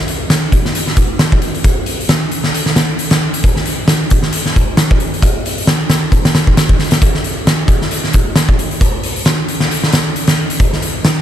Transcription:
0.08 closed hi-hat medium
0.30 snare loud
0.30 closed hi-hat medium
0.52 kick medium
0.52 closed hi-hat medium
0.65 snare soft
0.75 closed hi-hat medium
0.87 snare soft
0.97 kick medium
0.97 closed hi-hat medium
1.19 snare loud
1.19 closed hi-hat medium
1.32 kick medium
1.42 closed hi-hat medium
1.55 closed hi-hat soft
1.64 kick loud
1.64 closed hi-hat medium
1.86 closed hi-hat medium
2.00 closed hi-hat soft
2.09 snare loud
2.09 closed hi-hat medium
2.31 closed hi-hat medium
2.44 snare medium
2.54 closed hi-hat medium
2.66 snare soft
2.76 snare loud
2.76 closed hi-hat medium
2.99 closed hi-hat medium
3.11 snare loud
3.11 closed hi-hat medium
3.34 closed hi-hat medium
3.44 kick loud
3.44 closed hi-hat medium
3.56 snare soft
3.66 closed hi-hat medium
3.88 snare loud
3.88 closed hi-hat medium
4.10 kick medium
4.10 closed hi-hat medium
4.23 snare soft
4.33 closed hi-hat medium
4.46 snare soft
4.56 kick loud
4.56 closed hi-hat medium
4.77 snare loud
4.77 closed hi-hat medium
4.91 kick loud
5.00 closed hi-hat medium
5.14 closed hi-hat soft
5.22 kick loud
5.22 closed hi-hat medium
5.46 closed hi-hat medium
5.58 closed hi-hat soft
5.67 snare loud
5.67 closed hi-hat medium
5.90 snare loud
5.90 closed hi-hat medium
6.12 kick medium
6.12 closed hi-hat medium
6.25 snare loud
6.25 closed hi-hat medium
6.35 snare loud
6.35 closed hi-hat medium
6.47 kick medium
6.57 snare loud
6.57 closed hi-hat medium
6.69 kick loud
6.79 snare soft
6.79 open hi-hat medium
6.91 snare loud
6.91 closed hi-hat medium
7.02 kick loud
7.02 closed hi-hat medium
7.15 snare soft
7.24 closed hi-hat medium
7.47 snare loud
7.47 closed hi-hat medium
7.68 kick loud
7.68 closed hi-hat medium
7.82 snare soft
7.91 closed hi-hat medium
8.04 snare soft
8.13 kick medium
8.13 closed hi-hat medium
8.36 snare loud
8.36 closed hi-hat medium
8.49 kick medium
8.59 closed hi-hat medium
8.71 closed hi-hat soft
8.81 kick loud
8.81 closed hi-hat medium
9.03 closed hi-hat medium
9.16 closed hi-hat soft
9.25 snare loud
9.25 closed hi-hat medium
9.48 closed hi-hat medium
9.60 snare medium
9.71 closed hi-hat medium
9.83 snare medium
9.93 snare loud
9.93 closed hi-hat medium
10.16 closed hi-hat medium
10.27 snare loud
10.27 closed hi-hat medium
10.50 closed hi-hat medium
10.60 kick loud
10.60 closed hi-hat medium
10.73 snare soft
10.82 closed hi-hat medium
11.05 snare loud
11.05 closed hi-hat medium

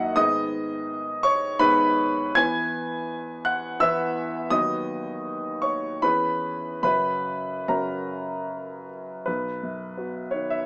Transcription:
0.00 0.15 F#2 medium
0.00 0.16 D#3 medium
0.00 0.21 A#3 medium
0.00 0.21 D#4 medium
0.00 0.21 E4 medium
0.00 0.13 F#4 medium
0.00 0.17 D#5 loud
0.00 0.17 F#5 loud
0.15 1.57 G#2 medium
0.15 1.57 D#3 medium
0.15 1.57 B3 medium
0.15 1.58 G#4 medium
0.15 1.21 D#5 medium
0.15 1.24 D#6 loud
1.23 1.59 C#5 medium
1.23 1.61 C#6 loud
1.59 2.35 G#2 medium
1.59 2.35 D#3 medium
1.59 2.35 B3 medium
1.59 2.36 G#4 medium
1.59 2.34 B4 loud
1.59 2.37 B5 loud
2.35 3.77 E2 medium
2.35 3.78 E3 medium
2.35 3.78 B3 medium
2.35 3.78 B4 medium
2.35 3.42 G#5 medium
2.35 3.45 G#6 loud
3.45 3.80 F#5 medium
3.45 3.82 F#6 loud
3.80 4.50 E2 medium
3.80 4.51 E3 medium
3.80 4.50 B3 medium
3.80 4.51 B4 medium
3.80 4.49 E5 medium
3.80 4.52 E6 loud
4.50 5.99 D#2 medium
4.50 5.99 F#3 medium
4.50 5.99 B3 medium
4.50 6.00 B4 soft
4.50 5.60 D#5 medium
4.50 5.64 D#6 loud
5.62 6.00 C#5 medium
5.62 6.02 C#6 medium
6.02 6.82 E2 medium
6.02 6.82 E3 soft
6.02 6.83 C#4 medium
6.02 6.83 G#4 medium
6.02 6.81 B4 medium
6.02 6.81 B5 loud
6.83 7.65 F#2 medium
6.83 7.66 C#3 soft
6.83 7.66 C#4 soft
6.83 7.67 F#4 soft
6.83 7.65 B4 medium
6.83 7.68 B5 medium
7.68 9.23 F#2 medium
7.68 9.23 C#3 soft
7.68 9.23 C#4 soft
7.68 9.24 F#4 soft
7.68 8.86 A#4 medium
7.68 8.89 A#5 medium
9.26 10.66 B1 medium
9.26 10.33 B4 medium
9.63 10.20 F#2 soft
9.97 10.29 B3 soft
9.97 10.30 F#4 soft
10.31 10.66 D#3 soft
10.31 10.50 C#5 medium
10.50 10.66 E5 medium

